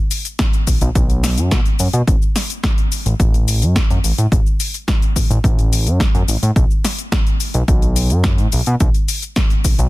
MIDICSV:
0, 0, Header, 1, 3, 480
1, 0, Start_track
1, 0, Tempo, 560748
1, 1777, Time_signature, 4, 2, 24, 8
1, 8468, End_track
2, 0, Start_track
2, 0, Title_t, "Analog synth bass"
2, 0, Program_c, 0, 38
2, 576, Note_on_c, 0, 35, 40
2, 673, Note_off_c, 0, 35, 0
2, 697, Note_on_c, 0, 35, 92
2, 770, Note_off_c, 0, 35, 0
2, 817, Note_on_c, 0, 35, 96
2, 1177, Note_on_c, 0, 42, 100
2, 1190, Note_off_c, 0, 35, 0
2, 1292, Note_off_c, 0, 42, 0
2, 1297, Note_on_c, 0, 47, 87
2, 1371, Note_off_c, 0, 47, 0
2, 1537, Note_on_c, 0, 42, 81
2, 1611, Note_off_c, 0, 42, 0
2, 1656, Note_on_c, 0, 47, 99
2, 1730, Note_off_c, 0, 47, 0
2, 1776, Note_on_c, 0, 33, 98
2, 1850, Note_off_c, 0, 33, 0
2, 2618, Note_on_c, 0, 33, 89
2, 2691, Note_off_c, 0, 33, 0
2, 2737, Note_on_c, 0, 33, 96
2, 3099, Note_on_c, 0, 42, 95
2, 3112, Note_off_c, 0, 33, 0
2, 3245, Note_off_c, 0, 42, 0
2, 3341, Note_on_c, 0, 42, 101
2, 3412, Note_off_c, 0, 42, 0
2, 3459, Note_on_c, 0, 33, 83
2, 3532, Note_off_c, 0, 33, 0
2, 3580, Note_on_c, 0, 45, 99
2, 3652, Note_off_c, 0, 45, 0
2, 3697, Note_on_c, 0, 33, 103
2, 3771, Note_off_c, 0, 33, 0
2, 4417, Note_on_c, 0, 33, 42
2, 4513, Note_off_c, 0, 33, 0
2, 4539, Note_on_c, 0, 33, 90
2, 4611, Note_off_c, 0, 33, 0
2, 4657, Note_on_c, 0, 33, 95
2, 5021, Note_on_c, 0, 42, 100
2, 5034, Note_off_c, 0, 33, 0
2, 5166, Note_off_c, 0, 42, 0
2, 5261, Note_on_c, 0, 42, 103
2, 5332, Note_off_c, 0, 42, 0
2, 5378, Note_on_c, 0, 33, 80
2, 5451, Note_off_c, 0, 33, 0
2, 5500, Note_on_c, 0, 45, 103
2, 5572, Note_off_c, 0, 45, 0
2, 5617, Note_on_c, 0, 35, 103
2, 5691, Note_off_c, 0, 35, 0
2, 6457, Note_on_c, 0, 35, 93
2, 6530, Note_off_c, 0, 35, 0
2, 6575, Note_on_c, 0, 35, 92
2, 6939, Note_on_c, 0, 42, 97
2, 6952, Note_off_c, 0, 35, 0
2, 7178, Note_on_c, 0, 45, 103
2, 7191, Note_off_c, 0, 42, 0
2, 7251, Note_off_c, 0, 45, 0
2, 7301, Note_on_c, 0, 35, 80
2, 7372, Note_off_c, 0, 35, 0
2, 7421, Note_on_c, 0, 47, 101
2, 7492, Note_off_c, 0, 47, 0
2, 7538, Note_on_c, 0, 35, 96
2, 7611, Note_off_c, 0, 35, 0
2, 8258, Note_on_c, 0, 35, 43
2, 8354, Note_off_c, 0, 35, 0
2, 8377, Note_on_c, 0, 35, 95
2, 8450, Note_off_c, 0, 35, 0
2, 8468, End_track
3, 0, Start_track
3, 0, Title_t, "Drums"
3, 93, Note_on_c, 9, 46, 109
3, 95, Note_on_c, 9, 82, 88
3, 179, Note_off_c, 9, 46, 0
3, 180, Note_off_c, 9, 82, 0
3, 215, Note_on_c, 9, 42, 54
3, 216, Note_on_c, 9, 82, 34
3, 300, Note_off_c, 9, 42, 0
3, 302, Note_off_c, 9, 82, 0
3, 334, Note_on_c, 9, 38, 117
3, 334, Note_on_c, 9, 42, 67
3, 336, Note_on_c, 9, 36, 114
3, 336, Note_on_c, 9, 82, 44
3, 420, Note_off_c, 9, 38, 0
3, 420, Note_off_c, 9, 42, 0
3, 421, Note_off_c, 9, 36, 0
3, 421, Note_off_c, 9, 82, 0
3, 457, Note_on_c, 9, 42, 36
3, 458, Note_on_c, 9, 82, 23
3, 543, Note_off_c, 9, 42, 0
3, 544, Note_off_c, 9, 82, 0
3, 575, Note_on_c, 9, 46, 83
3, 576, Note_on_c, 9, 36, 59
3, 577, Note_on_c, 9, 82, 81
3, 661, Note_off_c, 9, 36, 0
3, 661, Note_off_c, 9, 46, 0
3, 662, Note_off_c, 9, 82, 0
3, 696, Note_on_c, 9, 42, 54
3, 697, Note_on_c, 9, 82, 34
3, 781, Note_off_c, 9, 42, 0
3, 783, Note_off_c, 9, 82, 0
3, 816, Note_on_c, 9, 36, 110
3, 818, Note_on_c, 9, 42, 72
3, 819, Note_on_c, 9, 82, 48
3, 902, Note_off_c, 9, 36, 0
3, 903, Note_off_c, 9, 42, 0
3, 905, Note_off_c, 9, 82, 0
3, 938, Note_on_c, 9, 42, 36
3, 940, Note_on_c, 9, 82, 23
3, 1024, Note_off_c, 9, 42, 0
3, 1025, Note_off_c, 9, 82, 0
3, 1059, Note_on_c, 9, 38, 66
3, 1059, Note_on_c, 9, 46, 109
3, 1061, Note_on_c, 9, 82, 81
3, 1144, Note_off_c, 9, 38, 0
3, 1145, Note_off_c, 9, 46, 0
3, 1146, Note_off_c, 9, 82, 0
3, 1178, Note_on_c, 9, 42, 58
3, 1179, Note_on_c, 9, 82, 34
3, 1263, Note_off_c, 9, 42, 0
3, 1265, Note_off_c, 9, 82, 0
3, 1296, Note_on_c, 9, 38, 119
3, 1297, Note_on_c, 9, 36, 111
3, 1297, Note_on_c, 9, 42, 66
3, 1298, Note_on_c, 9, 82, 45
3, 1382, Note_off_c, 9, 36, 0
3, 1382, Note_off_c, 9, 38, 0
3, 1382, Note_off_c, 9, 42, 0
3, 1384, Note_off_c, 9, 82, 0
3, 1417, Note_on_c, 9, 42, 39
3, 1418, Note_on_c, 9, 82, 22
3, 1502, Note_off_c, 9, 42, 0
3, 1504, Note_off_c, 9, 82, 0
3, 1534, Note_on_c, 9, 46, 88
3, 1536, Note_on_c, 9, 82, 83
3, 1620, Note_off_c, 9, 46, 0
3, 1621, Note_off_c, 9, 82, 0
3, 1656, Note_on_c, 9, 42, 58
3, 1657, Note_on_c, 9, 82, 36
3, 1741, Note_off_c, 9, 42, 0
3, 1742, Note_off_c, 9, 82, 0
3, 1776, Note_on_c, 9, 36, 120
3, 1779, Note_on_c, 9, 42, 68
3, 1780, Note_on_c, 9, 82, 42
3, 1862, Note_off_c, 9, 36, 0
3, 1865, Note_off_c, 9, 42, 0
3, 1866, Note_off_c, 9, 82, 0
3, 1901, Note_on_c, 9, 82, 21
3, 1987, Note_off_c, 9, 82, 0
3, 2018, Note_on_c, 9, 38, 69
3, 2018, Note_on_c, 9, 46, 104
3, 2019, Note_on_c, 9, 82, 79
3, 2103, Note_off_c, 9, 38, 0
3, 2104, Note_off_c, 9, 46, 0
3, 2105, Note_off_c, 9, 82, 0
3, 2141, Note_on_c, 9, 42, 56
3, 2142, Note_on_c, 9, 82, 36
3, 2226, Note_off_c, 9, 42, 0
3, 2228, Note_off_c, 9, 82, 0
3, 2256, Note_on_c, 9, 36, 118
3, 2258, Note_on_c, 9, 38, 127
3, 2258, Note_on_c, 9, 42, 67
3, 2259, Note_on_c, 9, 82, 46
3, 2342, Note_off_c, 9, 36, 0
3, 2343, Note_off_c, 9, 38, 0
3, 2344, Note_off_c, 9, 42, 0
3, 2345, Note_off_c, 9, 82, 0
3, 2379, Note_on_c, 9, 42, 39
3, 2381, Note_on_c, 9, 82, 22
3, 2465, Note_off_c, 9, 42, 0
3, 2466, Note_off_c, 9, 82, 0
3, 2498, Note_on_c, 9, 46, 93
3, 2500, Note_on_c, 9, 82, 75
3, 2584, Note_off_c, 9, 46, 0
3, 2585, Note_off_c, 9, 82, 0
3, 2619, Note_on_c, 9, 42, 52
3, 2621, Note_on_c, 9, 82, 32
3, 2705, Note_off_c, 9, 42, 0
3, 2706, Note_off_c, 9, 82, 0
3, 2736, Note_on_c, 9, 36, 119
3, 2738, Note_on_c, 9, 42, 72
3, 2740, Note_on_c, 9, 82, 48
3, 2822, Note_off_c, 9, 36, 0
3, 2824, Note_off_c, 9, 42, 0
3, 2825, Note_off_c, 9, 82, 0
3, 2861, Note_on_c, 9, 42, 37
3, 2863, Note_on_c, 9, 82, 22
3, 2947, Note_off_c, 9, 42, 0
3, 2948, Note_off_c, 9, 82, 0
3, 2978, Note_on_c, 9, 46, 107
3, 2979, Note_on_c, 9, 82, 82
3, 3064, Note_off_c, 9, 46, 0
3, 3065, Note_off_c, 9, 82, 0
3, 3100, Note_on_c, 9, 42, 54
3, 3102, Note_on_c, 9, 82, 34
3, 3186, Note_off_c, 9, 42, 0
3, 3187, Note_off_c, 9, 82, 0
3, 3217, Note_on_c, 9, 36, 121
3, 3218, Note_on_c, 9, 38, 126
3, 3219, Note_on_c, 9, 42, 67
3, 3220, Note_on_c, 9, 82, 44
3, 3302, Note_off_c, 9, 36, 0
3, 3304, Note_off_c, 9, 38, 0
3, 3305, Note_off_c, 9, 42, 0
3, 3306, Note_off_c, 9, 82, 0
3, 3343, Note_on_c, 9, 42, 39
3, 3344, Note_on_c, 9, 82, 22
3, 3428, Note_off_c, 9, 42, 0
3, 3429, Note_off_c, 9, 82, 0
3, 3460, Note_on_c, 9, 46, 95
3, 3461, Note_on_c, 9, 82, 80
3, 3545, Note_off_c, 9, 46, 0
3, 3547, Note_off_c, 9, 82, 0
3, 3581, Note_on_c, 9, 42, 57
3, 3582, Note_on_c, 9, 82, 33
3, 3667, Note_off_c, 9, 42, 0
3, 3668, Note_off_c, 9, 82, 0
3, 3697, Note_on_c, 9, 36, 127
3, 3702, Note_on_c, 9, 42, 63
3, 3703, Note_on_c, 9, 82, 45
3, 3782, Note_off_c, 9, 36, 0
3, 3787, Note_off_c, 9, 42, 0
3, 3789, Note_off_c, 9, 82, 0
3, 3821, Note_on_c, 9, 82, 21
3, 3907, Note_off_c, 9, 82, 0
3, 3937, Note_on_c, 9, 46, 115
3, 3939, Note_on_c, 9, 82, 77
3, 4023, Note_off_c, 9, 46, 0
3, 4024, Note_off_c, 9, 82, 0
3, 4060, Note_on_c, 9, 42, 51
3, 4061, Note_on_c, 9, 82, 33
3, 4146, Note_off_c, 9, 42, 0
3, 4147, Note_off_c, 9, 82, 0
3, 4177, Note_on_c, 9, 36, 126
3, 4179, Note_on_c, 9, 38, 123
3, 4180, Note_on_c, 9, 42, 67
3, 4181, Note_on_c, 9, 82, 43
3, 4262, Note_off_c, 9, 36, 0
3, 4265, Note_off_c, 9, 38, 0
3, 4265, Note_off_c, 9, 42, 0
3, 4267, Note_off_c, 9, 82, 0
3, 4300, Note_on_c, 9, 42, 36
3, 4301, Note_on_c, 9, 82, 22
3, 4386, Note_off_c, 9, 42, 0
3, 4387, Note_off_c, 9, 82, 0
3, 4417, Note_on_c, 9, 36, 66
3, 4419, Note_on_c, 9, 46, 93
3, 4420, Note_on_c, 9, 82, 73
3, 4503, Note_off_c, 9, 36, 0
3, 4504, Note_off_c, 9, 46, 0
3, 4506, Note_off_c, 9, 82, 0
3, 4543, Note_on_c, 9, 42, 52
3, 4545, Note_on_c, 9, 82, 33
3, 4629, Note_off_c, 9, 42, 0
3, 4630, Note_off_c, 9, 82, 0
3, 4657, Note_on_c, 9, 36, 124
3, 4663, Note_on_c, 9, 42, 67
3, 4665, Note_on_c, 9, 82, 43
3, 4742, Note_off_c, 9, 36, 0
3, 4749, Note_off_c, 9, 42, 0
3, 4750, Note_off_c, 9, 82, 0
3, 4782, Note_on_c, 9, 42, 37
3, 4784, Note_on_c, 9, 82, 21
3, 4868, Note_off_c, 9, 42, 0
3, 4869, Note_off_c, 9, 82, 0
3, 4902, Note_on_c, 9, 46, 111
3, 4903, Note_on_c, 9, 82, 76
3, 4987, Note_off_c, 9, 46, 0
3, 4989, Note_off_c, 9, 82, 0
3, 5022, Note_on_c, 9, 42, 58
3, 5024, Note_on_c, 9, 82, 32
3, 5108, Note_off_c, 9, 42, 0
3, 5109, Note_off_c, 9, 82, 0
3, 5136, Note_on_c, 9, 36, 122
3, 5143, Note_on_c, 9, 38, 121
3, 5143, Note_on_c, 9, 42, 63
3, 5144, Note_on_c, 9, 82, 42
3, 5222, Note_off_c, 9, 36, 0
3, 5228, Note_off_c, 9, 38, 0
3, 5229, Note_off_c, 9, 42, 0
3, 5230, Note_off_c, 9, 82, 0
3, 5263, Note_on_c, 9, 42, 37
3, 5264, Note_on_c, 9, 82, 22
3, 5348, Note_off_c, 9, 42, 0
3, 5350, Note_off_c, 9, 82, 0
3, 5379, Note_on_c, 9, 46, 100
3, 5380, Note_on_c, 9, 82, 78
3, 5464, Note_off_c, 9, 46, 0
3, 5466, Note_off_c, 9, 82, 0
3, 5502, Note_on_c, 9, 42, 56
3, 5504, Note_on_c, 9, 82, 35
3, 5588, Note_off_c, 9, 42, 0
3, 5589, Note_off_c, 9, 82, 0
3, 5616, Note_on_c, 9, 36, 127
3, 5620, Note_on_c, 9, 42, 61
3, 5621, Note_on_c, 9, 82, 41
3, 5701, Note_off_c, 9, 36, 0
3, 5706, Note_off_c, 9, 42, 0
3, 5707, Note_off_c, 9, 82, 0
3, 5741, Note_on_c, 9, 82, 20
3, 5827, Note_off_c, 9, 82, 0
3, 5860, Note_on_c, 9, 38, 63
3, 5860, Note_on_c, 9, 46, 114
3, 5862, Note_on_c, 9, 82, 79
3, 5945, Note_off_c, 9, 38, 0
3, 5946, Note_off_c, 9, 46, 0
3, 5947, Note_off_c, 9, 82, 0
3, 5980, Note_on_c, 9, 42, 52
3, 5981, Note_on_c, 9, 82, 31
3, 6066, Note_off_c, 9, 42, 0
3, 6067, Note_off_c, 9, 82, 0
3, 6096, Note_on_c, 9, 36, 127
3, 6098, Note_on_c, 9, 38, 122
3, 6099, Note_on_c, 9, 42, 63
3, 6100, Note_on_c, 9, 82, 42
3, 6182, Note_off_c, 9, 36, 0
3, 6184, Note_off_c, 9, 38, 0
3, 6184, Note_off_c, 9, 42, 0
3, 6186, Note_off_c, 9, 82, 0
3, 6220, Note_on_c, 9, 42, 36
3, 6221, Note_on_c, 9, 82, 22
3, 6306, Note_off_c, 9, 42, 0
3, 6307, Note_off_c, 9, 82, 0
3, 6337, Note_on_c, 9, 46, 94
3, 6338, Note_on_c, 9, 82, 71
3, 6423, Note_off_c, 9, 46, 0
3, 6424, Note_off_c, 9, 82, 0
3, 6455, Note_on_c, 9, 42, 49
3, 6456, Note_on_c, 9, 82, 30
3, 6541, Note_off_c, 9, 42, 0
3, 6542, Note_off_c, 9, 82, 0
3, 6575, Note_on_c, 9, 36, 127
3, 6577, Note_on_c, 9, 42, 65
3, 6579, Note_on_c, 9, 82, 43
3, 6661, Note_off_c, 9, 36, 0
3, 6663, Note_off_c, 9, 42, 0
3, 6664, Note_off_c, 9, 82, 0
3, 6697, Note_on_c, 9, 42, 37
3, 6698, Note_on_c, 9, 82, 21
3, 6783, Note_off_c, 9, 42, 0
3, 6784, Note_off_c, 9, 82, 0
3, 6815, Note_on_c, 9, 46, 114
3, 6816, Note_on_c, 9, 82, 76
3, 6900, Note_off_c, 9, 46, 0
3, 6902, Note_off_c, 9, 82, 0
3, 6935, Note_on_c, 9, 42, 51
3, 6936, Note_on_c, 9, 82, 33
3, 7020, Note_off_c, 9, 42, 0
3, 7022, Note_off_c, 9, 82, 0
3, 7051, Note_on_c, 9, 38, 115
3, 7052, Note_on_c, 9, 42, 63
3, 7053, Note_on_c, 9, 82, 40
3, 7056, Note_on_c, 9, 36, 127
3, 7137, Note_off_c, 9, 38, 0
3, 7138, Note_off_c, 9, 42, 0
3, 7139, Note_off_c, 9, 82, 0
3, 7142, Note_off_c, 9, 36, 0
3, 7176, Note_on_c, 9, 42, 38
3, 7177, Note_on_c, 9, 82, 20
3, 7262, Note_off_c, 9, 42, 0
3, 7263, Note_off_c, 9, 82, 0
3, 7295, Note_on_c, 9, 46, 103
3, 7297, Note_on_c, 9, 82, 76
3, 7381, Note_off_c, 9, 46, 0
3, 7382, Note_off_c, 9, 82, 0
3, 7416, Note_on_c, 9, 42, 55
3, 7417, Note_on_c, 9, 82, 32
3, 7501, Note_off_c, 9, 42, 0
3, 7503, Note_off_c, 9, 82, 0
3, 7535, Note_on_c, 9, 42, 58
3, 7537, Note_on_c, 9, 36, 126
3, 7537, Note_on_c, 9, 82, 43
3, 7621, Note_off_c, 9, 42, 0
3, 7622, Note_off_c, 9, 36, 0
3, 7622, Note_off_c, 9, 82, 0
3, 7656, Note_on_c, 9, 42, 34
3, 7658, Note_on_c, 9, 82, 20
3, 7742, Note_off_c, 9, 42, 0
3, 7743, Note_off_c, 9, 82, 0
3, 7776, Note_on_c, 9, 46, 119
3, 7778, Note_on_c, 9, 82, 84
3, 7862, Note_off_c, 9, 46, 0
3, 7863, Note_off_c, 9, 82, 0
3, 7896, Note_on_c, 9, 42, 50
3, 7898, Note_on_c, 9, 82, 32
3, 7982, Note_off_c, 9, 42, 0
3, 7983, Note_off_c, 9, 82, 0
3, 8014, Note_on_c, 9, 38, 118
3, 8014, Note_on_c, 9, 42, 62
3, 8015, Note_on_c, 9, 82, 42
3, 8017, Note_on_c, 9, 36, 125
3, 8099, Note_off_c, 9, 38, 0
3, 8100, Note_off_c, 9, 42, 0
3, 8101, Note_off_c, 9, 82, 0
3, 8102, Note_off_c, 9, 36, 0
3, 8135, Note_on_c, 9, 42, 36
3, 8136, Note_on_c, 9, 82, 22
3, 8220, Note_off_c, 9, 42, 0
3, 8222, Note_off_c, 9, 82, 0
3, 8256, Note_on_c, 9, 36, 67
3, 8256, Note_on_c, 9, 46, 100
3, 8257, Note_on_c, 9, 82, 78
3, 8342, Note_off_c, 9, 36, 0
3, 8342, Note_off_c, 9, 46, 0
3, 8343, Note_off_c, 9, 82, 0
3, 8378, Note_on_c, 9, 42, 52
3, 8379, Note_on_c, 9, 82, 33
3, 8464, Note_off_c, 9, 42, 0
3, 8465, Note_off_c, 9, 82, 0
3, 8468, End_track
0, 0, End_of_file